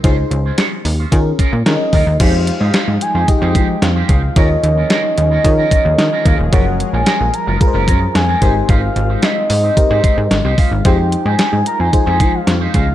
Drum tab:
CC |--------|x-------|--------|--------|
HH |xxxoxxxo|xxxxxxxx|xxxxxxxx|xxxxxxxx|
SD |--o---o-|--o---o-|--o---o-|--o---o-|
BD |o---oo-o|o---oo-o|o---oo-o|o---oo-o|

CC |--------|--------|
HH |xxxoxxxo|xxxxxxxx|
SD |--o---o-|--o---o-|
BD |o---oo-o|o---oo-o|